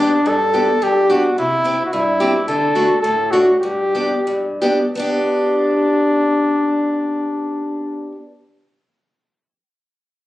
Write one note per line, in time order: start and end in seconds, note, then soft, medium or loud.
0.00 0.11 G2 medium
0.00 0.29 D4 loud
0.26 0.67 G2 medium
0.26 0.84 A4 loud
0.54 0.66 B3 soft
0.54 0.66 D4 soft
0.54 0.66 G4 medium
0.82 1.23 G2 medium
0.82 1.12 G4 loud
1.10 1.22 B3 medium
1.10 1.22 D4 medium
1.10 1.37 F#4 medium
1.10 1.22 G4 medium
1.38 1.79 C3 medium
1.38 1.83 E4 loud
1.64 1.77 C4 medium
1.64 1.77 E4 medium
1.64 1.77 G4 medium
1.85 1.94 F#4 medium
1.93 2.34 G2 medium
1.93 2.47 E4 loud
2.20 2.33 C4 medium
2.20 2.32 E4 medium
2.20 2.32 G4 medium
2.48 2.89 D3 medium
2.48 3.00 A4 loud
2.75 2.88 A3 medium
2.75 2.88 D4 medium
2.75 2.88 F#4 medium
3.01 3.47 A2 medium
3.01 3.33 A4 loud
3.31 3.46 A3 medium
3.31 3.46 D4 medium
3.31 3.59 F#4 medium
3.31 3.46 F#4 medium
3.59 4.10 G2 medium
3.59 4.56 G4 loud
3.95 4.09 B3 medium
3.95 4.09 D4 soft
3.95 4.09 G4 medium
4.27 4.79 G2 medium
4.62 4.78 B3 medium
4.62 4.78 D4 medium
4.62 4.78 G4 medium
4.95 8.12 B3 medium
4.95 8.12 D4 medium
4.95 8.14 D4 medium
4.99 8.16 G4 medium